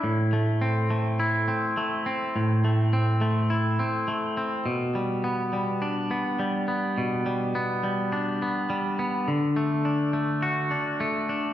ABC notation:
X:1
M:4/4
L:1/8
Q:1/4=104
K:Ador
V:1 name="Clean electric guitar"
A,, A, C A, E C A, C | A,, A, C A, E C A, C | B,, G, B, G, D B, G, B, | B,, G, B, G, D B, G, B, |
D, A, D A, F D A, D |]